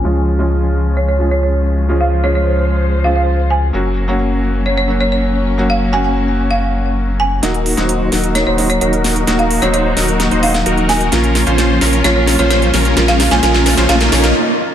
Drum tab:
HH |----------------|----------------|----------------|----------------|
SD |----------------|----------------|----------------|----------------|

HH |xxoxx-oxx-oxxxox|xxoxx-oxxxoxxxox|xxoxx-oxx-oxxxox|xxoxx-oxxxox----|
SD |o--o--o-o-----o-|o-----o-o--o--o-|o-o-o-o-o-o-o-o-|oooooooooooo----|